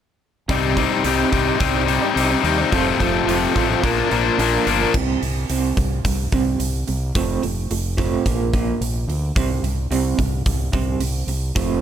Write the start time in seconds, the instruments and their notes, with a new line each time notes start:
0.48 fingered electric bass C2, clean electric guitar C3 G3 C4 D#4 G4 D5, kick, open hi-hat
0.77 overdriven electric guitar C3 G3, clean electric guitar C4 D#4 G4 D5, kick, open hi-hat
0.90 clean electric guitar C4 D#4 G4 D5
1.04 fingered electric bass C2, clean electric guitar C3 G3 C4 D#4 G4 D5, open hi-hat
1.31 fingered electric bass C2, overdriven electric guitar C3 G3, clean electric guitar C4 D#4 G4, kick, open hi-hat
1.36 clean electric guitar D5
1.47 clean electric guitar C4 D#4 G4 D5
1.59 fingered electric bass C2, overdriven electric guitar C3 G3 C4 D#4, kick, open hi-hat
1.87 overdriven electric guitar C3 G3, clean electric guitar C4 D#4, open hi-hat
1.91 clean electric guitar G4 D5
2.02 clean electric guitar C4 D#4 G4 D5
2.16 fingered electric bass C2, clean electric guitar C3 G3 C4 D#4 G4 D5, open hi-hat
2.30 clean electric guitar C4 D#4 G4 D5
2.43 fingered electric bass D#2, overdriven electric guitar C3 G3, clean electric guitar C4 D#4 G4, open hi-hat
2.47 clean electric guitar D5
2.58 clean electric guitar C4 D#4 G4 D5
2.71 fingered electric bass F1, overdriven electric guitar F2 C3 A3, clean electric guitar F3 G3 C4 F4, kick, open hi-hat
2.75 clean electric guitar A4
2.98 fingered electric bass F1, overdriven electric guitar F2 C3 F3 A3, clean electric guitar G3 C4 F4 A4, kick, open hi-hat
3.13 clean electric guitar C4 F4 A4
3.26 fingered electric bass F1, overdriven electric guitar F2 C3 A3, clean electric guitar F3 G3 C4 F4, open hi-hat
3.30 clean electric guitar A4
3.54 fingered electric bass A1, overdriven electric guitar F2 C3 F3 A3, clean electric guitar G3 C4 F4 A4, kick, open hi-hat
3.68 clean electric guitar C4 F4 A4
3.82 fingered electric bass A#1, clean electric guitar A#2 D3 F3 A#3 D4 A#4, kick, open hi-hat
4.09 fingered electric bass A#1, overdriven electric guitar A#2, clean electric guitar F3 A#3 D4 A#4, open hi-hat
4.23 clean electric guitar F3 A#3 D4 A#4
4.37 fingered electric bass A#1, clean electric guitar A#2 D3 F3 A#3 D4 A#4, open hi-hat
4.52 clean electric guitar F3 A#3 D4 A#4
4.66 fingered electric bass G1, overdriven electric guitar A#2, clean electric guitar F3 A#3 D4 A#4, open hi-hat
4.81 clean electric guitar F3 A#3 D4 A#4
4.94 fingered electric bass C2, clean electric guitar C3 G3 C4, kick, crash
5.22 fingered electric bass C2, clean electric guitar C3 G3, open hi-hat
5.50 fingered electric bass C2, clean electric guitar C3 G3 C4, open hi-hat
5.77 fingered electric bass C2, clean electric guitar C3 G3, kick, open hi-hat
6.04 fingered electric bass C2, clean electric guitar C3 G3, kick, open hi-hat
6.32 fingered electric bass C2, clean electric guitar C3 G3 C4, kick, open hi-hat
6.59 fingered electric bass C2, clean electric guitar C3 G3, open hi-hat
6.87 fingered electric bass C2, clean electric guitar C3 G3, open hi-hat
7.15 fingered electric bass F1, clean electric guitar F3 A3 C4, kick, open hi-hat
7.42 fingered electric bass F1, clean electric guitar F3 A3, open hi-hat
7.71 fingered electric bass F1, clean electric guitar F3 A3, open hi-hat
7.97 clean electric guitar F3 A3 C4, kick, open hi-hat
8.25 fingered electric bass A#1, clean electric guitar A#2 F3 A#3, kick, open hi-hat
8.53 clean electric guitar A#2 F3 A#3, kick, open hi-hat
8.81 fingered electric bass A#1, clean electric guitar A#2 F3, open hi-hat
9.08 fingered electric bass D2, clean electric guitar A#2 F3, open hi-hat
9.35 fingered electric bass C2, clean electric guitar C3 G3 C4, kick, open hi-hat
9.63 fingered electric bass C2, clean electric guitar C3 G3, open hi-hat
9.91 fingered electric bass C2, clean electric guitar C3 G3 C4, open hi-hat
10.18 fingered electric bass C2, clean electric guitar C3 G3, kick, open hi-hat
10.46 fingered electric bass C2, clean electric guitar C3 G3, kick, open hi-hat
10.72 fingered electric bass C2, clean electric guitar C3 G3 C4, kick, open hi-hat
10.99 fingered electric bass C2, clean electric guitar C3 G3, open hi-hat
11.27 fingered electric bass C2, clean electric guitar C3 G3, open hi-hat
11.55 fingered electric bass F1, clean electric guitar F3 A3 C4, kick, open hi-hat